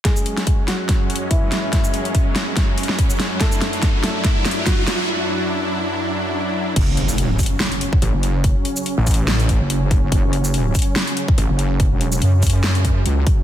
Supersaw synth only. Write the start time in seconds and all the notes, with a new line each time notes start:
0.05 F#2 F#3 G#3 C#4
3.41 D4 E4
6.76 C#3 F#3 C#4